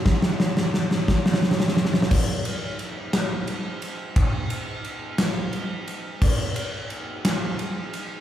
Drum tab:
CC |------------------------|x-----------------------|------------------------|x-----------------------|
RD |------------------------|----x---x---x---x---x---|x---x---x---x---x---x---|----x---x---x---x---x---|
SD |o-o-o-o-o-o-o-oooooooooo|------------o-----------|------------o-----------|------------o-----------|
BD |o-----------o-----------|o-----------------------|o-----------------------|o-----------------------|